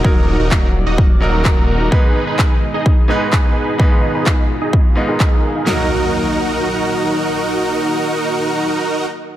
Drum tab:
CP |--x---x-|--x---x-|--x---x-|--------|
SD |--------|--------|--------|o-------|
BD |o-o-o-o-|o-o-o-o-|o-o-o-o-|--------|

CP |--------|
SD |--------|
BD |--------|